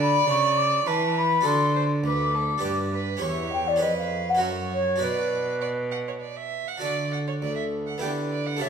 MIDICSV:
0, 0, Header, 1, 5, 480
1, 0, Start_track
1, 0, Key_signature, 2, "minor"
1, 0, Tempo, 589971
1, 1178, Time_signature, 3, 2, 24, 8
1, 3582, Tempo, 600601
1, 7009, End_track
2, 0, Start_track
2, 0, Title_t, "Flute"
2, 0, Program_c, 0, 73
2, 2, Note_on_c, 0, 83, 110
2, 225, Note_off_c, 0, 83, 0
2, 230, Note_on_c, 0, 85, 114
2, 466, Note_on_c, 0, 86, 106
2, 478, Note_off_c, 0, 85, 0
2, 704, Note_on_c, 0, 81, 95
2, 716, Note_off_c, 0, 86, 0
2, 953, Note_on_c, 0, 83, 103
2, 965, Note_off_c, 0, 81, 0
2, 1187, Note_on_c, 0, 84, 115
2, 1199, Note_off_c, 0, 83, 0
2, 1493, Note_off_c, 0, 84, 0
2, 1672, Note_on_c, 0, 86, 106
2, 2352, Note_off_c, 0, 86, 0
2, 2633, Note_on_c, 0, 76, 103
2, 2849, Note_off_c, 0, 76, 0
2, 2867, Note_on_c, 0, 79, 99
2, 2988, Note_on_c, 0, 74, 89
2, 3000, Note_off_c, 0, 79, 0
2, 3105, Note_on_c, 0, 75, 79
2, 3118, Note_off_c, 0, 74, 0
2, 3223, Note_off_c, 0, 75, 0
2, 3229, Note_on_c, 0, 77, 96
2, 3491, Note_on_c, 0, 78, 90
2, 3504, Note_off_c, 0, 77, 0
2, 3592, Note_off_c, 0, 78, 0
2, 3597, Note_on_c, 0, 76, 81
2, 3649, Note_off_c, 0, 76, 0
2, 3837, Note_on_c, 0, 73, 85
2, 4082, Note_on_c, 0, 71, 91
2, 4094, Note_off_c, 0, 73, 0
2, 5043, Note_off_c, 0, 71, 0
2, 5995, Note_on_c, 0, 69, 59
2, 6471, Note_on_c, 0, 71, 58
2, 6483, Note_off_c, 0, 69, 0
2, 6942, Note_on_c, 0, 73, 70
2, 6954, Note_off_c, 0, 71, 0
2, 7009, Note_off_c, 0, 73, 0
2, 7009, End_track
3, 0, Start_track
3, 0, Title_t, "Violin"
3, 0, Program_c, 1, 40
3, 0, Note_on_c, 1, 74, 104
3, 708, Note_on_c, 1, 71, 92
3, 720, Note_off_c, 1, 74, 0
3, 1172, Note_on_c, 1, 69, 76
3, 1184, Note_off_c, 1, 71, 0
3, 1414, Note_off_c, 1, 69, 0
3, 1424, Note_on_c, 1, 72, 79
3, 1490, Note_off_c, 1, 72, 0
3, 1662, Note_on_c, 1, 71, 74
3, 1904, Note_on_c, 1, 69, 73
3, 1917, Note_off_c, 1, 71, 0
3, 2141, Note_off_c, 1, 69, 0
3, 2148, Note_on_c, 1, 67, 73
3, 2213, Note_off_c, 1, 67, 0
3, 2381, Note_on_c, 1, 71, 81
3, 2613, Note_on_c, 1, 73, 84
3, 2625, Note_off_c, 1, 71, 0
3, 3107, Note_on_c, 1, 71, 75
3, 3119, Note_off_c, 1, 73, 0
3, 3581, Note_on_c, 1, 73, 75
3, 3593, Note_off_c, 1, 71, 0
3, 4064, Note_off_c, 1, 73, 0
3, 4069, Note_on_c, 1, 74, 73
3, 4497, Note_off_c, 1, 74, 0
3, 4547, Note_on_c, 1, 74, 69
3, 4611, Note_off_c, 1, 74, 0
3, 4789, Note_on_c, 1, 78, 71
3, 4838, Note_off_c, 1, 78, 0
3, 4921, Note_on_c, 1, 73, 58
3, 4968, Note_off_c, 1, 73, 0
3, 5021, Note_on_c, 1, 74, 64
3, 5147, Note_on_c, 1, 76, 74
3, 5159, Note_off_c, 1, 74, 0
3, 5400, Note_on_c, 1, 78, 68
3, 5412, Note_off_c, 1, 76, 0
3, 5506, Note_off_c, 1, 78, 0
3, 5511, Note_on_c, 1, 74, 68
3, 5735, Note_off_c, 1, 74, 0
3, 5756, Note_on_c, 1, 78, 61
3, 5804, Note_off_c, 1, 78, 0
3, 5876, Note_on_c, 1, 73, 60
3, 5923, Note_off_c, 1, 73, 0
3, 5995, Note_on_c, 1, 74, 60
3, 6095, Note_off_c, 1, 74, 0
3, 6099, Note_on_c, 1, 76, 65
3, 6163, Note_off_c, 1, 76, 0
3, 6352, Note_on_c, 1, 78, 59
3, 6459, Note_off_c, 1, 78, 0
3, 6464, Note_on_c, 1, 79, 67
3, 6528, Note_off_c, 1, 79, 0
3, 6702, Note_on_c, 1, 74, 65
3, 6826, Note_on_c, 1, 78, 68
3, 6838, Note_off_c, 1, 74, 0
3, 6947, Note_on_c, 1, 76, 68
3, 6959, Note_off_c, 1, 78, 0
3, 7009, Note_off_c, 1, 76, 0
3, 7009, End_track
4, 0, Start_track
4, 0, Title_t, "Harpsichord"
4, 0, Program_c, 2, 6
4, 0, Note_on_c, 2, 50, 68
4, 0, Note_on_c, 2, 62, 60
4, 0, Note_on_c, 2, 66, 59
4, 0, Note_on_c, 2, 69, 59
4, 188, Note_off_c, 2, 50, 0
4, 219, Note_on_c, 2, 49, 72
4, 667, Note_off_c, 2, 49, 0
4, 705, Note_on_c, 2, 52, 65
4, 1125, Note_off_c, 2, 62, 0
4, 1132, Note_off_c, 2, 66, 0
4, 1138, Note_off_c, 2, 69, 0
4, 1145, Note_on_c, 2, 62, 61
4, 1147, Note_off_c, 2, 52, 0
4, 1155, Note_on_c, 2, 66, 63
4, 1168, Note_on_c, 2, 69, 60
4, 1183, Note_on_c, 2, 50, 71
4, 1626, Note_off_c, 2, 50, 0
4, 1658, Note_on_c, 2, 38, 66
4, 2088, Note_off_c, 2, 62, 0
4, 2096, Note_off_c, 2, 66, 0
4, 2098, Note_on_c, 2, 62, 57
4, 2103, Note_off_c, 2, 69, 0
4, 2105, Note_off_c, 2, 38, 0
4, 2109, Note_on_c, 2, 67, 52
4, 2120, Note_on_c, 2, 71, 54
4, 2131, Note_on_c, 2, 43, 60
4, 2579, Note_on_c, 2, 61, 55
4, 2580, Note_off_c, 2, 67, 0
4, 2582, Note_off_c, 2, 43, 0
4, 2583, Note_off_c, 2, 62, 0
4, 2589, Note_on_c, 2, 67, 55
4, 2594, Note_off_c, 2, 71, 0
4, 2600, Note_on_c, 2, 73, 57
4, 2614, Note_on_c, 2, 40, 66
4, 3049, Note_off_c, 2, 61, 0
4, 3059, Note_on_c, 2, 61, 59
4, 3064, Note_off_c, 2, 40, 0
4, 3070, Note_off_c, 2, 67, 0
4, 3070, Note_on_c, 2, 68, 55
4, 3075, Note_off_c, 2, 73, 0
4, 3079, Note_on_c, 2, 71, 55
4, 3094, Note_on_c, 2, 41, 62
4, 3527, Note_off_c, 2, 61, 0
4, 3537, Note_on_c, 2, 61, 48
4, 3548, Note_off_c, 2, 41, 0
4, 3553, Note_off_c, 2, 68, 0
4, 3553, Note_on_c, 2, 66, 47
4, 3558, Note_off_c, 2, 71, 0
4, 3566, Note_on_c, 2, 70, 52
4, 3573, Note_on_c, 2, 42, 55
4, 4025, Note_on_c, 2, 62, 48
4, 4029, Note_off_c, 2, 61, 0
4, 4029, Note_off_c, 2, 66, 0
4, 4031, Note_off_c, 2, 42, 0
4, 4039, Note_on_c, 2, 66, 53
4, 4044, Note_off_c, 2, 70, 0
4, 4051, Note_on_c, 2, 71, 50
4, 4062, Note_on_c, 2, 47, 55
4, 5322, Note_off_c, 2, 47, 0
4, 5464, Note_off_c, 2, 62, 0
4, 5471, Note_off_c, 2, 66, 0
4, 5477, Note_off_c, 2, 71, 0
4, 5477, Note_on_c, 2, 62, 41
4, 5493, Note_on_c, 2, 66, 40
4, 5505, Note_on_c, 2, 69, 38
4, 5515, Note_on_c, 2, 50, 44
4, 5960, Note_off_c, 2, 50, 0
4, 5997, Note_on_c, 2, 38, 49
4, 6419, Note_off_c, 2, 62, 0
4, 6427, Note_off_c, 2, 66, 0
4, 6433, Note_off_c, 2, 69, 0
4, 6438, Note_off_c, 2, 38, 0
4, 6441, Note_on_c, 2, 59, 40
4, 6453, Note_on_c, 2, 64, 38
4, 6469, Note_on_c, 2, 67, 40
4, 6475, Note_on_c, 2, 50, 43
4, 6909, Note_on_c, 2, 57, 40
4, 6912, Note_off_c, 2, 67, 0
4, 6914, Note_off_c, 2, 50, 0
4, 6915, Note_off_c, 2, 59, 0
4, 6920, Note_off_c, 2, 64, 0
4, 6921, Note_on_c, 2, 67, 39
4, 6934, Note_on_c, 2, 69, 42
4, 6945, Note_on_c, 2, 49, 48
4, 7009, Note_off_c, 2, 49, 0
4, 7009, Note_off_c, 2, 57, 0
4, 7009, Note_off_c, 2, 67, 0
4, 7009, Note_off_c, 2, 69, 0
4, 7009, End_track
5, 0, Start_track
5, 0, Title_t, "Cello"
5, 0, Program_c, 3, 42
5, 0, Note_on_c, 3, 50, 88
5, 188, Note_off_c, 3, 50, 0
5, 217, Note_on_c, 3, 49, 77
5, 690, Note_off_c, 3, 49, 0
5, 703, Note_on_c, 3, 52, 81
5, 1169, Note_off_c, 3, 52, 0
5, 1181, Note_on_c, 3, 50, 85
5, 1654, Note_on_c, 3, 38, 78
5, 1666, Note_off_c, 3, 50, 0
5, 2131, Note_off_c, 3, 38, 0
5, 2136, Note_on_c, 3, 43, 78
5, 2608, Note_off_c, 3, 43, 0
5, 2619, Note_on_c, 3, 40, 78
5, 3099, Note_on_c, 3, 41, 74
5, 3112, Note_off_c, 3, 40, 0
5, 3579, Note_on_c, 3, 42, 73
5, 3591, Note_off_c, 3, 41, 0
5, 4066, Note_on_c, 3, 47, 73
5, 4078, Note_off_c, 3, 42, 0
5, 5355, Note_off_c, 3, 47, 0
5, 5515, Note_on_c, 3, 50, 55
5, 5992, Note_on_c, 3, 38, 53
5, 6004, Note_off_c, 3, 50, 0
5, 6459, Note_off_c, 3, 38, 0
5, 6464, Note_on_c, 3, 50, 56
5, 6939, Note_on_c, 3, 49, 58
5, 6951, Note_off_c, 3, 50, 0
5, 7009, Note_off_c, 3, 49, 0
5, 7009, End_track
0, 0, End_of_file